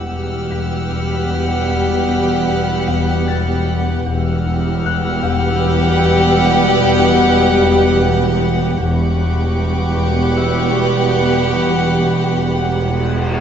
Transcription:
Already playing: E1 E2 B2 G3 B3 G4 F#5 E6 A6
0.13 E2 F6
0.51 E2 B6
0.91 E2 B6
1.30 E2
1.69 E2
2.09 E2
2.48 E2
2.87 E2
3.28 E2 A6
3.67 E2
4.06 E1 E2 B2 G3 B3 G4 F#5 E6 F6
4.46 E2
4.86 E2 F#6
5.23 E2
5.64 E2
6.04 E2
6.42 E2
6.82 E2
7.22 E2
7.61 E2
8.01 E2
8.39 E2
8.77 E1 E2 B2 G3 B3 G4 F#5 B5 C#6 D6
9.18 E2
9.57 E2
9.97 E2
10.37 E5 E6
10.76 E2
11.16 E2
11.56 E2
11.96 E2
12.35 E2
12.75 E2
13.14 E2

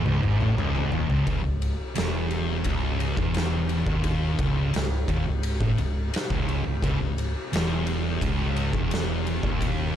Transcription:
0.06 C#1 C#2, mid tom
0.22 G#1 G#2, mid tom
0.40 A1 A2, mid tom
0.57 C#1 C#2, mid tom
0.75 floor tom
0.92 D#1 D#2, floor tom
1.10 C#1 C#2, floor tom
1.27 C#1 C#2, kick, ride
1.44 C#1 C#2
1.62 ride
1.95 E1 E2, snare, ride
2.31 ride
2.64 C#1 C#2, kick, ride
3.00 ride
3.17 E1 E2, kick
3.34 snare, ride
3.69 ride
3.86 D#1 D#2, kick
4.04 kick, ride
4.39 C#1 C#2, kick, ride
4.74 C#1 C#2, snare, ride
5.08 D#1 D#2, kick, ride
5.27 C#1 C#2
5.43 ride
5.60 A1 A2, kick
5.78 C#1 C#2, ride
6.14 snare, ride
6.30 C#1 C#2, kick
6.49 ride
6.66 C#1 C#2
6.82 C#1 C#2, kick, ride
7.00 C#1 C#2
7.18 ride
7.52 E1 E2, snare, ride
7.87 ride
8.21 C#1 C#2, kick, ride
8.56 ride
8.73 E1 E2, kick
8.91 snare, ride
9.27 ride
9.43 D#1 D#2, kick
9.61 kick, ride

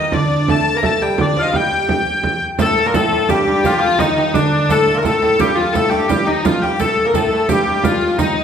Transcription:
Already playing: D#3 D#4 D#5
0.12 D3 D4 D5, frame drum
0.30 frame drum
0.48 A3 A4 A5, frame drum
0.66 frame drum
0.75 A#3 A#4 A#5
0.83 A3 A4 A5, frame drum
1.00 G3 G4 G5, frame drum
1.18 D3 D4 D5, frame drum
1.36 F3 F4 F5, frame drum
1.41 F3 D#5
1.45 F4 F5
1.53 G3 G4 G5, frame drum
1.89 frame drum
2.23 frame drum
2.58 A2 A3 A4, riq, frame drum
2.77 frame drum
2.85 A#2 A#3 A#4
2.94 A2 A3 A4, riq, frame drum
3.12 A2, frame drum
3.29 G2 G3 G4, riq, frame drum
3.46 G2 G3, frame drum
3.63 F2 F4 G4, riq, frame drum
3.67 F4
3.73 G4
3.78 F2 F4, frame drum
3.99 D#2 D#4, riq, frame drum
4.17 D#2, frame drum
4.34 D2 D4, riq, frame drum
4.52 frame drum
4.69 A2 A3 A4, riq, frame drum
4.88 frame drum
4.95 A#2 A#4
5.03 A2 A3 A4, riq, frame drum
5.21 A2 A3 A4, frame drum
5.38 G2 G3 G4, riq, frame drum
5.55 F2 F4, frame drum
5.73 A2 A3 A4, riq, frame drum
5.90 G2 G4, riq
6.08 G2 G3 G4, riq, frame drum
6.26 D#2 D#4, riq, frame drum
6.45 F2 F4, riq, frame drum
6.62 G2 G3 G4
6.79 A2 A3 A4, riq, frame drum
6.97 frame drum
7.05 A#2 A#3 A#4
7.14 A2 A3 A4, riq, frame drum
7.31 A2 A3, frame drum
7.49 G2 G3 G4, riq, frame drum
7.66 G2 G3 G4, frame drum
7.84 F2 F4, riq, frame drum
8.01 F2, frame drum
8.17 D#2 D#4, riq, frame drum
8.37 frame drum

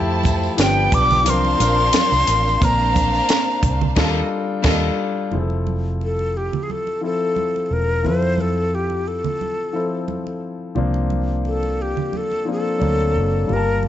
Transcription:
Already playing: F2 F3 A3 E4 G4 C5 A5
0.24 kick, closed hi-hat, tambourine, high conga
0.43 tambourine
0.57 G1 F3 B3 D4 G4 B4 G5, snare, closed hi-hat, tambourine, muted conga
0.62 G5
0.92 B1 D6, kick, closed hi-hat
1.11 tambourine, low conga
1.25 C2 F3 C4 D4 A#4 F5, closed hi-hat, tambourine, muted conga, high conga
1.30 C6
1.45 muted conga
1.58 A#1 F3 C4 D4 A#4, closed hi-hat, tambourine, high conga
1.93 snare, closed hi-hat, tambourine, muted conga, high conga
2.12 C2, tambourine, muted conga
2.27 A1, closed hi-hat, tambourine
2.48 tambourine
2.60 A#1 A#3 C4 D4 A#4 C5 F5, kick, closed hi-hat, tambourine, muted conga, low conga
2.65 A#5
2.80 muted conga
2.96 kick, closed hi-hat, tambourine, high conga
3.15 tambourine
3.29 snare, closed hi-hat, tambourine, muted conga
3.63 C2, kick, closed hi-hat
3.81 low conga
3.96 D#2 G3 A#3 D4 F4 A4 D#5, kick, snare, crash
4.62 D#2 G3 A#3 D4 F4 A4 D#5, kick, snare, crash
5.31 F1 F3 C4 E4 G#4, low conga
5.41 A4
5.50 muted conga
5.67 high conga
6.01 A4, muted conga
6.19 muted conga
6.37 G4
6.53 low conga
6.63 G#4
6.70 A4, high conga
6.87 muted conga
7.01 F3 C4 E4 A4
7.36 high conga
7.56 muted conga
7.66 A4
7.71 E1 A#4
8.03 F2 F3 C4 E4 A4 C5, low conga
8.22 muted conga
8.38 A4, high conga
8.75 G4
8.90 muted conga
9.08 A4
9.24 low conga
9.41 high conga
9.73 F3 C4 E4 A4
10.08 high conga
10.27 muted conga
10.75 C2 F3 A#3 C4 D4, muted conga, low conga
10.94 muted conga
11.10 high conga
11.45 A4, muted conga
11.63 muted conga
11.82 G4
11.97 low conga
12.13 A4, muted conga, high conga
12.32 muted conga
12.45 F3 A#3 C4 D4
12.52 A4
12.79 D2 F#3 A#3 C4 D4, muted conga, high conga
13.00 muted conga
13.16 F#1
13.47 G1 G3 A#3 F4 G4, muted conga, low conga
13.53 A#4 A5
13.83 high conga

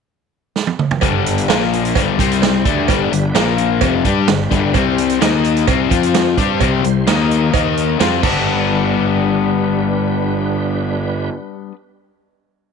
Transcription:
0.56 snare
0.67 high tom
0.79 mid tom
0.91 floor tom
1.01 G1 G2 D3 G3 D4 B4, kick, closed hi-hat, cowbell
1.26 closed hi-hat
1.38 closed hi-hat
1.48 A#1 A#2 F3 A#3 A#4, snare, closed hi-hat, cowbell
1.62 snare
1.73 closed hi-hat
1.85 closed hi-hat
1.95 G1 G2 D3 G3, kick, closed hi-hat, cowbell
2.19 C2 C3 G3 C4 C5, kick, closed hi-hat
2.31 closed hi-hat
2.42 snare, closed hi-hat, cowbell
2.65 D2 D3 G3 A3 D4 B4, kick, closed hi-hat
2.88 G1 G2 D3 G3, kick, closed hi-hat, cowbell
3.12 G1 G2 D3, closed hi-hat
3.34 A#1 A#2 F3 A#3 A#4, snare, closed hi-hat, cowbell
3.58 closed hi-hat
3.81 F1 F2 C3 F3 G3 D4 B4, kick, closed hi-hat, cowbell
4.04 G2 G3 D4 G4, kick, closed hi-hat
4.28 G1 G2 D3, snare, closed hi-hat, cowbell
4.51 G1 G2 D3 G3, kick, closed hi-hat
4.73 C2 C3 G3 C4 C5, kick, closed hi-hat, cowbell
4.98 closed hi-hat
5.09 closed hi-hat
5.20 D#2 D#3 A#3 D#4 D#5, snare, closed hi-hat, cowbell
5.44 closed hi-hat
5.56 closed hi-hat
5.67 C2 C3 G3 C4, kick, closed hi-hat, cowbell
5.90 F2 F3 C4 F4 C5, kick, closed hi-hat
6.03 closed hi-hat
6.14 snare, closed hi-hat, cowbell
6.38 G2 G3 C4 D4 G4 C5, kick, closed hi-hat
6.60 C2 C3 G3 C4, kick, closed hi-hat, cowbell
6.84 C2 C3 G3, closed hi-hat
7.07 D#2 D#3 A#3 D#4 D#5, snare, closed hi-hat, cowbell
7.31 closed hi-hat
7.53 D#2 D#3 A#3 D#4, kick, closed hi-hat, cowbell
7.77 closed hi-hat
7.99 F2 F3 G3 C4 F4 C5, snare, closed hi-hat, cowbell
8.22 G1 G3 B3 D4 B4, kick, crash, cowbell
8.26 B4

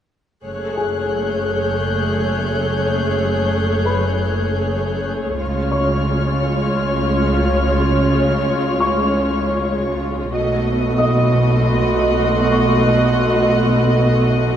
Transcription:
0.45 F#1 F#2 A3 G#4 C#5 F#6
0.77 G#4 G#5
1.09 G6
3.85 B4 B5
5.39 C#2 C#3 G#3 F4 C#5 C#6 F6
5.72 C#5 C#6
8.80 C#6
10.34 B1 B2 A3 F#4 D#5 B5
10.97 D#5 C6 D#6
11.59 F#6
12.52 C#6

